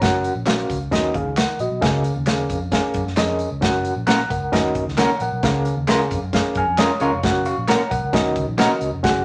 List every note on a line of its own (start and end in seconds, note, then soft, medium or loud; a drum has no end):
0.00 0.29 F#1 medium
0.00 0.32 C#4 medium
0.00 0.33 F#4 medium
0.00 0.33 A#4 medium
0.00 0.23 C#5 medium
0.00 0.33 F#5 medium
0.00 0.23 A#5 medium
0.00 kick loud
0.00 snare loud
0.00 closed hi-hat medium
0.00 tambourine soft
0.24 closed hi-hat medium
0.24 tambourine soft
0.35 0.63 A#1 medium
0.46 0.77 C#4 medium
0.46 0.77 F#4 medium
0.46 0.77 A#4 medium
0.46 0.78 F5 medium
0.46 snare loud
0.46 clap medium
0.46 closed hi-hat medium
0.46 tambourine medium
0.69 0.88 C#2 medium
0.69 kick medium
0.69 closed hi-hat medium
0.69 tambourine medium
0.91 1.10 D#2 loud
0.91 1.56 D#3 medium
0.91 1.22 C#4 medium
0.91 1.14 F#4 medium
0.91 1.15 A#4 medium
0.91 1.15 D#5 medium
0.91 kick medium
0.91 snare medium
0.91 closed hi-hat medium
1.14 1.23 D#2 medium
1.14 1.37 G#4 medium
1.14 1.36 F5 medium
1.14 kick medium
1.14 closed hi-hat medium
1.25 1.44 C#2 medium
1.37 1.59 A#4 medium
1.37 1.58 F#5 medium
1.37 snare loud
1.37 clap medium
1.37 closed hi-hat loud
1.37 tambourine medium
1.59 1.69 A#1 medium
1.59 2.03 F#4 medium
1.59 2.03 D#5 medium
1.59 closed hi-hat medium
1.59 tambourine medium
1.70 1.80 B1 medium
1.81 2.10 C#2 loud
1.81 2.46 C#3 medium
1.81 2.13 C#4 medium
1.81 2.13 G#4 medium
1.81 2.13 A#4 medium
1.81 2.13 F5 medium
1.81 kick loud
1.81 snare loud
1.81 closed hi-hat medium
1.81 tambourine soft
2.04 closed hi-hat medium
2.04 tambourine soft
2.16 2.44 D#2 medium
2.26 2.58 C#4 medium
2.26 2.58 G#4 medium
2.26 2.58 A#4 medium
2.26 2.58 F5 medium
2.26 snare loud
2.26 clap medium
2.26 closed hi-hat medium
2.26 tambourine medium
2.49 2.77 F2 medium
2.49 kick medium
2.49 closed hi-hat medium
2.49 tambourine medium
2.71 3.03 C#4 medium
2.71 3.03 G#4 medium
2.71 3.03 A#4 medium
2.71 3.04 F5 medium
2.71 kick medium
2.71 snare medium
2.71 closed hi-hat medium
2.71 tambourine soft
2.94 3.04 F#2 medium
2.94 kick medium
2.94 closed hi-hat medium
2.94 tambourine soft
3.06 3.15 F#2 medium
3.06 snare soft
3.17 3.45 F2 medium
3.17 3.48 C#4 medium
3.17 3.48 G#4 medium
3.17 3.48 A#4 medium
3.17 3.49 D#5 medium
3.17 snare loud
3.17 clap medium
3.17 closed hi-hat medium
3.17 tambourine medium
3.39 closed hi-hat medium
3.39 tambourine medium
3.51 3.60 C#2 medium
3.61 3.90 F#1 medium
3.61 3.93 C#4 medium
3.61 3.93 F#4 medium
3.61 3.93 A#4 medium
3.61 3.93 F#5 medium
3.61 kick loud
3.61 snare loud
3.61 closed hi-hat medium
3.61 tambourine soft
3.85 closed hi-hat medium
3.85 tambourine medium
3.96 4.24 A#1 medium
4.07 4.19 A#3 medium
4.07 4.19 C#4 medium
4.07 4.19 F#4 medium
4.07 4.19 A#4 medium
4.07 4.29 A#5 medium
4.07 4.29 F#6 medium
4.07 snare loud
4.07 clap medium
4.07 closed hi-hat medium
4.07 tambourine medium
4.30 4.49 C#2 medium
4.30 4.52 A#4 medium
4.30 4.73 F#5 medium
4.30 kick medium
4.30 closed hi-hat medium
4.30 tambourine medium
4.52 4.71 D#2 medium
4.52 5.16 D#3 medium
4.52 4.83 C#4 medium
4.52 4.83 F#4 medium
4.52 4.84 A#4 medium
4.52 4.84 D#5 medium
4.52 kick medium
4.52 snare loud
4.52 closed hi-hat medium
4.52 tambourine soft
4.75 4.85 D#2 medium
4.75 kick medium
4.75 closed hi-hat medium
4.87 5.05 C#2 medium
4.87 snare soft
4.97 5.09 A#3 medium
4.97 5.09 C#4 medium
4.97 5.09 F#4 medium
4.97 5.10 A#4 medium
4.97 5.20 C#5 medium
4.97 5.20 A#5 medium
4.97 snare loud
4.97 clap medium
4.97 closed hi-hat medium
4.97 tambourine medium
5.20 5.30 A#1 medium
5.20 5.43 A#4 medium
5.20 5.64 F#5 medium
5.20 closed hi-hat medium
5.20 tambourine medium
5.32 5.41 B1 medium
5.43 5.71 C#2 loud
5.43 6.07 C#3 medium
5.43 5.74 C#4 medium
5.43 5.74 G#4 medium
5.43 5.74 A#4 medium
5.43 5.75 F5 medium
5.43 kick loud
5.43 snare medium
5.43 closed hi-hat medium
5.43 tambourine soft
5.65 closed hi-hat medium
5.65 tambourine medium
5.77 5.95 D#2 medium
5.87 5.99 G#3 medium
5.87 5.99 C#4 medium
5.87 6.19 C#4 medium
5.87 6.00 F4 medium
5.87 6.19 G#4 medium
5.87 6.19 A#4 medium
5.87 6.00 A#4 medium
5.87 6.20 F5 medium
5.87 snare loud
5.87 clap medium
5.87 closed hi-hat medium
5.87 tambourine medium
6.11 6.20 F2 medium
6.11 kick medium
6.11 closed hi-hat medium
6.11 tambourine medium
6.22 6.41 F#2 medium
6.33 6.64 C#4 medium
6.33 6.64 G#4 medium
6.33 6.64 A#4 medium
6.33 6.56 F5 medium
6.33 kick medium
6.33 snare loud
6.33 closed hi-hat medium
6.33 tambourine soft
6.55 6.65 F#2 medium
6.55 6.78 G#5 medium
6.55 6.78 F6 medium
6.55 kick medium
6.55 closed hi-hat medium
6.55 tambourine soft
6.68 6.86 F2 medium
6.78 6.89 G#3 medium
6.78 6.90 C#4 medium
6.78 6.90 F4 medium
6.78 6.90 A#4 medium
6.78 7.21 C#5 medium
6.78 7.00 D#6 medium
6.78 snare loud
6.78 clap medium
6.78 closed hi-hat loud
6.78 tambourine medium
7.00 7.10 C#2 medium
7.00 7.09 G#3 medium
7.00 7.10 C#4 medium
7.00 7.10 F4 medium
7.00 7.10 A#4 medium
7.00 7.44 F5 medium
7.00 7.44 C#6 medium
7.00 closed hi-hat medium
7.00 tambourine medium
7.12 7.21 F1 medium
7.23 7.51 F#1 loud
7.23 7.54 C#4 medium
7.23 7.55 F#4 medium
7.23 7.47 A#4 medium
7.23 7.47 F#5 medium
7.23 kick loud
7.23 snare loud
7.23 closed hi-hat medium
7.23 tambourine soft
7.45 7.67 F5 medium
7.45 7.67 C#6 medium
7.45 closed hi-hat medium
7.45 tambourine medium
7.58 7.76 A#1 medium
7.68 7.79 A#3 medium
7.68 7.80 C#4 medium
7.68 7.80 F#4 medium
7.68 7.80 A#4 medium
7.68 7.91 C#5 medium
7.68 7.90 A#5 medium
7.68 snare loud
7.68 clap medium
7.68 closed hi-hat medium
7.68 tambourine medium
7.91 8.01 B1 medium
7.91 8.13 A#4 medium
7.91 8.34 F#5 medium
7.91 kick medium
7.91 closed hi-hat medium
7.91 tambourine medium
8.04 8.12 C#2 medium
8.13 8.32 D#2 medium
8.13 8.77 D#3 medium
8.13 8.44 C#4 medium
8.13 8.44 F#4 medium
8.13 8.45 A#4 medium
8.13 8.45 D#5 medium
8.13 kick medium
8.13 snare loud
8.13 closed hi-hat medium
8.36 8.45 C#2 medium
8.36 kick medium
8.36 closed hi-hat medium
8.36 tambourine soft
8.48 8.66 A#1 medium
8.58 8.70 A#3 medium
8.58 8.89 C#4 medium
8.58 8.70 C#4 medium
8.58 8.89 F#4 medium
8.58 8.70 F#4 loud
8.58 8.90 A#4 medium
8.58 8.70 A#4 loud
8.58 8.90 D#5 medium
8.58 snare loud
8.58 clap medium
8.58 closed hi-hat medium
8.58 tambourine medium
8.81 8.91 C#2 medium
8.81 closed hi-hat medium
8.81 tambourine medium
8.93 9.02 F1 medium
9.03 9.25 F#1 loud
9.03 9.25 C#4 medium
9.03 9.25 F#4 medium
9.03 9.25 G#4 medium
9.03 9.25 F#5 medium
9.03 kick loud
9.03 snare loud
9.03 closed hi-hat medium
9.03 tambourine soft